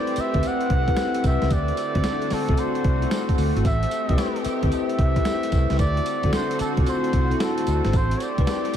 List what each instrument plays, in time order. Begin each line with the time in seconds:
Already playing: analog synth pad A3 C4 G4, tine electric piano C4 E4 G4 B4, muted trumpet D5
0.07 closed hi-hat
0.16 muted fingered electric bass stroke, closed hi-hat, tambourine
0.20 muted trumpet E5
0.34 fingered electric bass D2, tine electric piano C4 E4 G4 B4, kick, closed hi-hat
0.43 closed hi-hat, tambourine
0.47 muted trumpet F#5
0.61 closed hi-hat
0.70 fingered electric bass C2, kick, closed hi-hat
0.88 tine electric piano C4 E4 G4 B4, kick, closed hi-hat
0.97 snare, closed hi-hat, tambourine
1.15 closed hi-hat
1.24 fingered electric bass C2, muted trumpet E5, kick, closed hi-hat, tambourine
1.41 fingered electric bass C#2, tine electric piano C4 E4 G4 B4, snare, closed hi-hat
1.50 fingered electric bass D2, analog synth pad D3 F#4, muted trumpet D5, kick, closed hi-hat, tambourine
1.68 closed hi-hat
1.77 closed hi-hat, tambourine
1.95 fingered electric bass D2, tine electric piano C4 E4 F#4 A4, kick, closed hi-hat
2.04 snare, closed hi-hat, tambourine
2.22 closed hi-hat
2.30 muted trumpet A4, muted fingered electric bass stroke, snare, open hi-hat, tambourine
2.48 fingered electric bass C2, tine electric piano C4 E4 F#4 A4, kick, closed hi-hat
2.57 muted trumpet C5, closed hi-hat, tambourine
2.75 closed hi-hat
2.84 fingered electric bass C2, kick, closed hi-hat
3.02 tine electric piano C4 E4 F#4 A4, closed hi-hat
3.11 snare, closed hi-hat, tambourine
3.29 kick, closed hi-hat
3.38 fingered electric bass D2, open hi-hat, tambourine
3.56 fingered electric bass G#1, tine electric piano C4 E4 F#4 A4, closed hi-hat
3.65 fingered electric bass A1, analog synth pad G4, muted trumpet E5, kick, closed hi-hat, tambourine
3.83 closed hi-hat
3.91 closed hi-hat, tambourine
4.09 fingered electric bass C2, tine electric piano C4 E4 G4 B4, kick, closed hi-hat
4.18 snare, closed hi-hat, tambourine
4.36 closed hi-hat
4.45 muted fingered electric bass stroke, closed hi-hat, tambourine
4.63 fingered electric bass D2, tine electric piano C4 E4 G4 B4, kick, closed hi-hat
4.71 tine electric piano C5, muted trumpet E5, closed hi-hat, tambourine
4.89 closed hi-hat
4.99 fingered electric bass C2, kick, closed hi-hat
5.16 tine electric piano C4 E4 G4 B4, kick, closed hi-hat
5.25 snare, closed hi-hat, tambourine
5.43 closed hi-hat
5.52 fingered electric bass C2, kick, closed hi-hat, tambourine
5.70 fingered electric bass C#2, tine electric piano C4 E4 G4 B4, snare, closed hi-hat
5.79 fingered electric bass D2, analog synth pad D3 C4 F#4, muted trumpet D5, kick, closed hi-hat, tambourine
5.97 closed hi-hat
6.06 closed hi-hat, tambourine
6.23 fingered electric bass D2, tine electric piano C4 E4 F#4 A4, kick, closed hi-hat
6.33 muted trumpet C5, snare, closed hi-hat, tambourine
6.51 closed hi-hat
6.59 muted trumpet A4, muted fingered electric bass stroke, closed hi-hat, tambourine
6.77 fingered electric bass C2, tine electric piano C4 E4 F4 A4, kick, closed hi-hat
6.84 tine electric piano F#4, closed hi-hat, tambourine
6.89 muted trumpet C5
7.04 closed hi-hat
7.13 fingered electric bass C2, kick, closed hi-hat
7.31 tine electric piano C4 E4 F#4 A4, closed hi-hat
7.40 muted trumpet A4, snare, closed hi-hat, tambourine
7.58 closed hi-hat
7.67 fingered electric bass D2, closed hi-hat, tambourine
7.85 fingered electric bass G#1, tine electric piano C4 E4 F#4 C5, snare, closed hi-hat
7.93 fingered electric bass A1, analog synth pad A3 G4, muted trumpet C5, kick, closed hi-hat, tambourine
8.11 closed hi-hat
8.18 muted trumpet C#5, closed hi-hat, tambourine
8.23 muted trumpet D5
8.38 fingered electric bass C2, tine electric piano C4 E4 G4 B4, kick, closed hi-hat
8.47 snare, closed hi-hat, tambourine
8.65 closed hi-hat
8.74 closed hi-hat